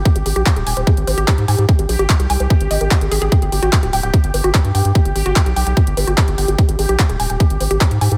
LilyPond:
<<
  \new Staff \with { instrumentName = "Synth arpeggio sound" } { \time 4/4 \tempo 4 = 147 aes'16 aes'16 aes'16 g'16 aes''16 aes'16 aes''16 c''16 aes'16 r16 c''16 g'16 r8 aes''16 aes'16 | aes'16 aes'16 aes'16 g'16 aes''16 aes'16 aes''16 c''16 aes'16 r16 ees''16 bes'16 g'16 aes'16 aes'16 aes'16 | g'16 g'16 g'16 fis'16 g''16 g'16 g''16 g''16 g'16 r16 b'16 fis'16 r8 g''16 g'16 | g'16 g'16 g'16 fis'16 g''16 g'16 g''16 g''16 g'16 r16 b'16 fis'16 r8 g''16 g'16 |
aes'16 aes'16 aes'16 g'16 aes''16 aes'16 aes''16 aes''16 aes'16 r16 c''16 g'16 r8 aes''16 aes'16 | }
  \new Staff \with { instrumentName = "Synth texture" } { \time 4/4 g'1~ | g'1~ | g'1~ | g'1~ |
g'1 | }
  \new Staff \with { instrumentName = "Analog synth bass" } { \clef bass \time 4/4 r16 aes,,16 aes,,16 bes,,16 r16 ees,,16 ees,,16 ees,,16 r16 aes,,16 aes,,16 aes,,16 r16 aes,16 aes,16 aes,16 | r16 aes,,16 bes,,16 aes,,16 r16 c,16 c,16 c,16 r16 aes,,16 aes,,16 aes,,16 r16 aes,,16 aes,,16 aes,,16 | r16 g,,16 g,,16 aes,,16 r16 d,,16 d,,16 d,,16 r16 g,,16 g,,16 g,,16 r16 g,16 g,16 g,16 | r16 g,,16 aes,,16 g,,16 r16 b,,16 b,,16 b,,16 r16 g,,16 g,,16 g,,16 r16 g,,16 g,,16 g,,16 |
r16 aes,,16 aes,,16 bes,,16 r16 ees,,16 ees,,16 ees,,16 r16 aes,,16 aes,,16 aes,,16 r16 aes,16 aes,16 aes,16 | }
  \new DrumStaff \with { instrumentName = "Drums" } \drummode { \time 4/4 <hh bd>16 hh16 hho16 hh16 <hc hh bd>16 hh16 hho16 hh16 <hh bd>16 hh16 hho16 hh16 <hc hh bd>16 hh16 hho16 hh16 | <hh bd>16 hh16 hho16 hh16 <hc hh bd>16 hh16 hho16 hh16 <hh bd>16 hh16 hho16 hh16 <hc hh bd>16 hh16 hho16 hh16 | <hh bd>16 hh16 hho16 hh16 <hc hh bd>16 hh16 hho16 hh16 <hh bd>16 hh16 hho16 hh16 <hc hh bd>16 hh16 hho16 hh16 | <hh bd>16 hh16 hho16 hh16 <hc hh bd>16 hh16 hho16 hh16 <hh bd>16 hh16 hho16 hh16 <hc hh bd>16 hh16 hho16 hh16 |
<hh bd>16 hh16 hho16 hh16 <hc hh bd>16 hh16 hho16 hh16 <hh bd>16 hh16 hho16 hh16 <hc hh bd>16 hh16 hho16 hh16 | }
>>